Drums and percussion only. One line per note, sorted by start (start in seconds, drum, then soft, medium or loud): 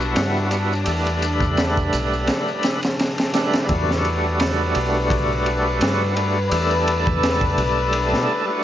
0.00 maracas soft
0.16 snare loud
0.16 ride medium
0.16 maracas soft
0.36 maracas soft
0.51 ride medium
0.51 maracas medium
0.73 maracas soft
0.86 ride medium
0.86 maracas medium
1.07 ride soft
1.07 maracas soft
1.22 ride medium
1.22 maracas medium
1.40 kick loud
1.40 maracas soft
1.57 snare loud
1.57 ride medium
1.57 maracas soft
1.77 kick medium
1.77 maracas soft
1.93 ride medium
1.93 maracas medium
2.13 maracas soft
2.27 snare medium
2.27 ride medium
2.27 maracas medium
2.48 maracas soft
2.63 snare medium
2.63 ride medium
2.63 maracas medium
2.83 snare loud
2.83 ride medium
2.83 maracas soft
2.99 snare loud
2.99 ride medium
2.99 maracas soft
3.18 snare loud
3.18 ride medium
3.18 maracas soft
3.34 snare medium
3.34 ride medium
3.34 maracas medium
3.53 snare loud
3.53 ride medium
3.53 maracas soft
3.69 kick loud
3.69 ride medium
3.91 snare medium
4.05 ride medium
4.40 snare loud
4.40 ride medium
4.75 ride medium
5.10 kick loud
5.10 ride medium
5.46 ride medium
5.81 snare loud
5.81 ride medium
6.17 ride medium
6.51 ride medium
6.71 ride soft
6.88 ride medium
7.07 kick medium
7.23 snare loud
7.23 ride medium
7.41 kick loud
7.58 ride medium
7.93 ride medium
8.14 snare soft